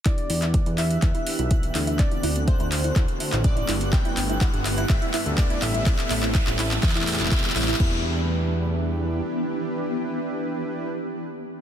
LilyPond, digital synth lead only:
\new Staff \with { instrumentName = "Digital synth lead" } { \time 4/4 \key e \minor \tempo 4 = 124 d''4. e''2~ e''8 | d''4 c''2 d''4 | g''4 fis''4 e''4 d''8 e''8~ | e''2. r4 |
r1 | r1 | }